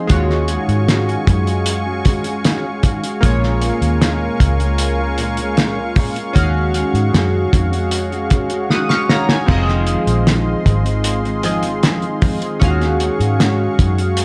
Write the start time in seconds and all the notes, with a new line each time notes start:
Already playing: C4 D#4 G#4 F5
0.07 D#2 D#3 G#3 C#4 F4 F#4 G#5 C#6, kick, closed hi-hat
0.12 F#4 C#5
0.30 snare
0.48 D#3 G#3 C#4, closed hi-hat
0.52 F#4
0.68 G#2, closed hi-hat
0.88 D#3 G#3 C#4 F#4, snare, closed hi-hat
1.09 closed hi-hat
1.27 F#2 D#3 G#3 C#4 F#4, kick, closed hi-hat
1.46 G#3 C#4 F#4, closed hi-hat
1.66 closed hi-hat
1.85 G#3 C#4 F#4
2.05 D#3 G#3 C#4 F#4, kick, closed hi-hat
2.24 C#4 F#4, closed hi-hat
2.28 G#3
2.44 D#3 G#3 C#4 F#4, snare, closed hi-hat
2.64 G#3 C#4 F#4
2.83 D#3 G#3 C#4, kick, closed hi-hat
2.87 F#4
3.02 G#3 C#4 F#4, closed hi-hat
3.21 A#1 A#2 G#3 A#3 C#4 F4 G#4 A#4 G#5 C#6, kick, closed hi-hat
3.25 F4 C#5
3.43 snare
3.61 A#2 G#3 C#4 F4, closed hi-hat
3.81 D#2, closed hi-hat
4.00 A#2 G#3 C#4 F4, snare, closed hi-hat
4.40 C#2 A#2 G#3 C#4 F4, kick, closed hi-hat
4.59 G#3 C#4 F4, closed hi-hat
4.78 closed hi-hat
4.98 G#3 C#4 F4
5.18 A#2 G#3 C#4 F4, closed hi-hat
5.37 C#4 F4, closed hi-hat
5.41 G#3
5.57 A#2 G#3 C#4 F4, snare, closed hi-hat
5.77 G#3 C#4 F4
5.96 A#2 G#3 C#4 F4, kick, open hi-hat
6.15 G#3 C#4 F4, closed hi-hat
6.33 D#2 D#3 G#3 C#4 F#4 G#4, kick, closed hi-hat
6.38 F#4 F5
6.74 D#3 G#3 C#4 F#4, closed hi-hat
6.94 G#2, closed hi-hat
7.13 F#2 D#3 G#3 C#4 F#4, snare, closed hi-hat
7.52 F2 D#3 G#3 C#4 F#4, kick, closed hi-hat
7.71 G#3 C#4 F#4, closed hi-hat
7.91 closed hi-hat
8.10 G#3 C#4 F#4, closed hi-hat
8.30 D#3 G#3 C#4, kick, closed hi-hat
8.34 F#4
8.50 G#3 C#4 F#4, closed hi-hat
8.69 D#3 G#3 C#4 F#4 F#5 D#6, snare
8.89 C#4 F#4 F5 C#6, snare
8.93 G#3
9.08 D#3 G#3 C#4 F#4 C#5 A#5, snare
9.29 G#5, snare
9.46 F1 F2 D#3 G#3 C4 F4 G#4 D#5 C6, kick, crash
9.51 D#5
9.68 snare
9.86 F2 D#3 G#3 C4, closed hi-hat
10.07 A#1, closed hi-hat
10.26 F2 D#3 G#3 C4, snare, closed hi-hat
10.64 G#1 F2 D#3 G#3 C4, kick, closed hi-hat
10.84 G#3 C4, closed hi-hat
10.88 D#3
11.04 closed hi-hat
11.23 D#3 G#3 C4, closed hi-hat
11.43 F2 D#3 G#3 C4 F4 G#4 D#5, closed hi-hat
11.63 D#3 G#3 C4, closed hi-hat
11.83 F2 D#3 G#3 C4, snare, closed hi-hat
12.02 D#3 G#3 C4, closed hi-hat
12.21 F2 D#3 G#3 C4, kick, open hi-hat
12.40 D#3 G#3 C4, closed hi-hat
12.59 D#2 D#3 G#3 C#4 F4 F#4 G#4 F5 C#6, kick, closed hi-hat
12.64 F#4 F5
12.82 snare, closed hi-hat
12.99 D#3 G#3 C#4 F#4, closed hi-hat
13.20 G#2, closed hi-hat
13.39 D#3 G#3 C#4 F#4, snare, closed hi-hat
13.78 F#2 D#3 G#3 C#4 F#4, kick, closed hi-hat
13.97 G#3 C#4 F#4, closed hi-hat
14.17 closed hi-hat